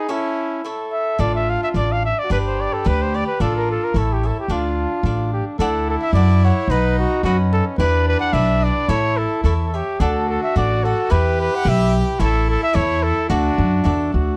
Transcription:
Already playing: trumpet G#4
0.08 trumpet C#4 E4, cavaquinho E4 A4 C#5 E5
0.64 cavaquinho E4 A4 C#5 E5, trumpet A4
0.92 trumpet E5
1.18 upright bass A1, cavaquinho D4 A4 D5 F5, trumpet F4 D5
1.35 trumpet E5
1.49 trumpet F5
1.64 trumpet E5
1.74 upright bass A1, cavaquinho D4 A4 D5 F5, trumpet D5
1.92 trumpet F5
2.05 trumpet E5
2.19 trumpet D5
2.24 trumpet F#4
2.30 upright bass G1, cavaquinho D4 G4 B4 D5, trumpet G4 B4
2.47 trumpet C5
2.61 trumpet D5
2.73 trumpet A4
2.84 upright bass D2, cavaquinho D4 G4 B4 D5, trumpet B4
3.02 trumpet C5
3.14 cavaquinho G4 B4 D5, trumpet D5
3.27 trumpet B4
3.40 upright bass A1, cavaquinho D4 A4 D5 F5, trumpet F4 A4
3.56 trumpet A#4
3.71 trumpet A4
3.84 trumpet A#4
3.94 upright bass A1, cavaquinho E4 A4 C#5 E5, trumpet E4
3.98 trumpet A4
4.13 trumpet G4
4.23 cavaquinho A4 C#5 E5, trumpet A4
4.40 trumpet G4
4.48 upright bass D2, trumpet D4 F4, cavaquinho D4 A4 D5 F5
5.03 upright bass A1, trumpet D4, cavaquinho D4 A4 D5 F5
5.33 trumpet G4
5.59 upright bass D2, cavaquinho D4 A4 D5 F#5, trumpet E4 A4
5.90 trumpet A4
6.02 trumpet E5
6.13 upright bass F#2, cavaquinho D4 A4 D5 F#5, trumpet D5
6.44 cavaquinho A4 D5 F#5, trumpet C#5
6.68 upright bass B1, cavaquinho D#4 B4 D#5 F#5, trumpet D#4 B4
6.99 trumpet F#4
7.23 upright bass F#2, trumpet C#4 F#4, cavaquinho D#4 B4 D#5 F#5
7.53 trumpet A4
7.78 upright bass E2, trumpet D4 B4, cavaquinho E4 G4 B4 D5
8.08 trumpet B4
8.20 trumpet F#5
8.33 upright bass B1, cavaquinho E4 G4 B4 D5, trumpet E5
8.64 trumpet D5
8.88 upright bass A1, cavaquinho E4 A4 C#5 E5, trumpet E4 C#5
9.18 trumpet A4
9.44 upright bass E2, cavaquinho E4 A4 C#5 E5, trumpet A4
9.66 trumpet A4
9.74 trumpet G4, cavaquinho A4 C#5 E5
10.00 upright bass D2, cavaquinho D4 A4 D5 F#5, trumpet F#4 A4
10.30 trumpet A4
10.43 trumpet E5
10.56 upright bass A1, cavaquinho D4 A4 D5 F#5, trumpet D5
10.84 trumpet A4, cavaquinho A4 D5 F#5
11.10 upright bass E2, cavaquinho E4 G4 B4 E5, trumpet G4 B4
11.41 trumpet B4
11.55 trumpet F#5
11.64 upright bass B1, cavaquinho E4 G4 B4 E5
11.69 trumpet E5
12.19 upright bass A1, cavaquinho E4 A4 C#5 E5, trumpet E4 A4
12.50 trumpet A4
12.63 trumpet E5
12.73 upright bass E2, cavaquinho E4 A4 C#5 E5, trumpet C#5
13.03 trumpet A4
13.29 upright bass D2, trumpet D4 F#4, cavaquinho F#4 A4 D5 E5
13.58 upright bass F#2
13.84 upright bass E2, trumpet D4, cavaquinho F#4 A4 D5 E5
14.13 upright bass D2, trumpet F#4

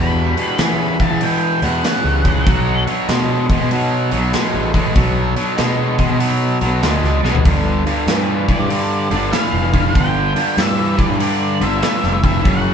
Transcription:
Already playing: overdriven electric guitar E2 B2, picked electric bass E2, tonewheel organ D4 F#4 G4 B4, lead electric guitar B5
0.36 overdriven electric guitar E2 B2, open hi-hat
0.58 overdriven electric guitar E2 C#3, picked electric bass E3, lead electric guitar B5, snare, open hi-hat
1.00 overdriven electric guitar E2 C#3, lead electric guitar A5, kick, open hi-hat
1.11 picked electric bass E3
1.21 overdriven electric guitar E2 B2, lead electric guitar G5, open hi-hat
1.61 picked electric bass E2, overdriven electric guitar E2 B2, tonewheel organ D4 F#4 G4 B4, lead electric guitar F#5, open hi-hat
1.83 overdriven electric guitar E2 C#3, tonewheel organ D4 F#4 G4 B4, snare, open hi-hat
2.04 picked electric bass C#2
2.25 overdriven electric guitar E2 C#3, kick, open hi-hat
2.46 picked electric bass B1, overdriven electric guitar B2 F#3, tonewheel organ D4 F#4 A4 C#5, kick, open hi-hat
2.87 overdriven electric guitar B2 F#3, open hi-hat
3.09 overdriven electric guitar B2 G#3, picked electric bass B2, snare, open hi-hat
3.50 overdriven electric guitar B2 G#3, kick, open hi-hat
3.61 picked electric bass B2
3.71 overdriven electric guitar B2 F#3, open hi-hat
4.11 picked electric bass B1, overdriven electric guitar B2 F#3, tonewheel organ D4 F#4 A4 C#5, open hi-hat
4.33 overdriven electric guitar B2 G#3, tonewheel organ D4 F#4 A4 C#5, snare, open hi-hat
4.54 picked electric bass A1
4.74 overdriven electric guitar B2 G#3, kick, open hi-hat
4.95 picked electric bass B1, overdriven electric guitar B2 F#3, tonewheel organ D4 F#4 A4 C#5, kick, open hi-hat
5.36 overdriven electric guitar B2 F#3, open hi-hat
5.58 overdriven electric guitar B2 G#3, picked electric bass B2, snare, open hi-hat
5.98 overdriven electric guitar B2 G#3, kick, open hi-hat
6.10 picked electric bass B2
6.20 overdriven electric guitar B2 F#3, open hi-hat
6.61 picked electric bass B1, overdriven electric guitar B2 F#3, tonewheel organ D4 F#4 A4 C#5, open hi-hat
6.82 picked electric bass D2, overdriven electric guitar B2 G#3, tonewheel organ D4 F#4 A4 D5, snare, open hi-hat
7.03 picked electric bass C#2, snare
7.23 picked electric bass B1, overdriven electric guitar B2 G#3, snare
7.34 picked electric bass A1, floor tom
7.45 picked electric bass G1, overdriven electric guitar G2 D3, tonewheel organ D4 F4 A4 B4, kick, open hi-hat
7.86 overdriven electric guitar G2 D3, open hi-hat
8.06 picked electric bass G2, overdriven electric guitar G2 E3, snare, open hi-hat
8.48 overdriven electric guitar G2 E3, lead electric guitar D5, kick, open hi-hat
8.59 picked electric bass G2
8.70 overdriven electric guitar G2 D3, open hi-hat
9.10 picked electric bass G1, overdriven electric guitar G2 D3, tonewheel organ D4 F4 A4 D5, open hi-hat
9.32 overdriven electric guitar G2 E3, tonewheel organ D4 F4 A4 B4, lead electric guitar F5, snare, open hi-hat
9.53 picked electric bass F1
9.73 overdriven electric guitar G2 E3, kick, open hi-hat
9.95 picked electric bass G1, overdriven electric guitar G2 D3, tonewheel organ D4 F4 A4 B4, lead electric guitar G5, kick, open hi-hat
10.36 overdriven electric guitar G2 D3, open hi-hat
10.57 overdriven electric guitar G2 E3, picked electric bass G2, lead electric guitar E5, snare, open hi-hat
10.97 overdriven electric guitar G2 E3, lead electric guitar D5, kick, open hi-hat
11.09 picked electric bass G2
11.19 overdriven electric guitar G2 D3, lead electric guitar D5, open hi-hat
11.61 picked electric bass G1, overdriven electric guitar G2 D3, tonewheel organ D4 F4 A4 B4, lead electric guitar E5, open hi-hat
11.81 overdriven electric guitar G2 E3, tonewheel organ D4 F4 A4 D5, snare, open hi-hat
12.04 picked electric bass F1, snare
12.23 overdriven electric guitar G2 E3, lead electric guitar E5, kick, open hi-hat
12.44 picked electric bass F#1, overdriven electric guitar F#2 C#3, tonewheel organ C#4 E4 A4 A#4, kick, open hi-hat
12.48 lead electric guitar F#5

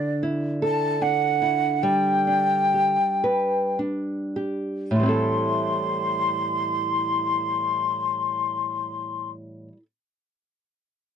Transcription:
Already playing: nylon-string guitar D3 D4, flute D5
0.23 nylon-string guitar E4
0.62 nylon-string guitar A4, flute A5
1.01 nylon-string guitar D4, flute F#5
1.42 nylon-string guitar E4
1.83 nylon-string guitar G3, flute G5
2.27 nylon-string guitar D4
2.74 nylon-string guitar G4
3.24 nylon-string guitar B4
3.79 nylon-string guitar D4
4.36 nylon-string guitar G4
4.91 nylon-string guitar A2, flute C6
4.95 nylon-string guitar E3
5.00 nylon-string guitar G3 C4
5.06 nylon-string guitar E4 A4

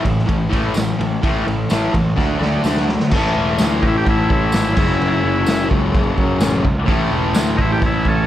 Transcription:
0.03 picked electric bass A1, distorted electric guitar A2 E3, kick, ride
0.19 snare
0.26 picked electric bass A1, distorted electric guitar A2 E3, kick, ride
0.49 picked electric bass A1, distorted electric guitar A2 E3 A3, kick
0.53 ride
0.74 picked electric bass A1, distorted electric guitar A2 E3, snare, ride, tambourine
0.99 picked electric bass A1, distorted electric guitar A2 E3, ride
1.22 picked electric bass A1, distorted electric guitar A2 E3 A3, kick, ride
1.45 picked electric bass A1, distorted electric guitar A2 E3, ride
1.69 picked electric bass A1, distorted electric guitar A2 E3 A3, snare, ride, tambourine
1.92 picked electric bass A1, distorted electric guitar A2 E3, kick, ride
2.16 picked electric bass D2, distorted electric guitar D3 A3 D4, kick, snare
2.38 picked electric bass D2, distorted electric guitar D3 A3 D4, snare
2.64 picked electric bass D2, distorted electric guitar D3 A3 D4, snare, tambourine
2.77 snare
2.89 distorted electric guitar D3 A3, snare
3.00 snare
3.11 picked electric bass A1, distorted electric guitar A2 E3, kick, crash
3.16 distorted electric guitar A3
3.36 picked electric bass E1
3.58 picked electric bass D2, snare, tambourine, crash
3.83 picked electric bass A1, transistor combo organ D#4, kick
3.87 transistor combo organ E4
3.98 transistor combo organ G4
4.06 picked electric bass A1, transistor combo organ E4, kick, crash
4.30 picked electric bass A1, transistor combo organ E4, kick
4.52 picked electric bass G#1, snare, tambourine, crash
4.76 picked electric bass F#1, distorted electric guitar F#2 C#3 F#3, kick, crash
5.01 picked electric bass F#1, crash
5.24 picked electric bass F#1
5.46 picked electric bass F#1, snare, tambourine, crash
5.71 picked electric bass C#2, kick
5.95 picked electric bass F#1, kick, crash
6.18 picked electric bass F#2, kick
6.40 picked electric bass A1, snare, tambourine, crash
6.65 picked electric bass C#2, kick
6.86 picked electric bass A1, distorted electric guitar A2 E3 A3, kick, crash
7.11 picked electric bass E1
7.33 picked electric bass D2, snare, tambourine, crash
7.57 picked electric bass A1, transistor combo organ D#4, kick
7.61 transistor combo organ E4
7.72 transistor combo organ G4
7.82 picked electric bass A1, kick, crash
7.86 transistor combo organ E4
8.05 picked electric bass A1, transistor combo organ C#4 A4, kick

